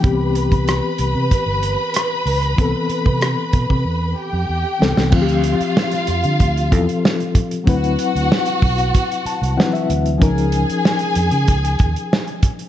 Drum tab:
CC |----------------|----------------|x---------------|----------------|
HH |x-xxx-x-x-x-x-ox|x-x-x-x---------|-xxx-xxxxxxx-xxx|xxxx-xoxxxxx-xxx|
SD |----r-------r---|----r---------oo|----oo------o---|----o-------o---|
BD |o--o----o-------|o--o--oo--------|o-------o-o---o-|o-----o-o-------|

CC |----------------|
HH |xxxx-xxxxxxx-xxx|
SD |----o-------o---|
BD |o-------o-o---o-|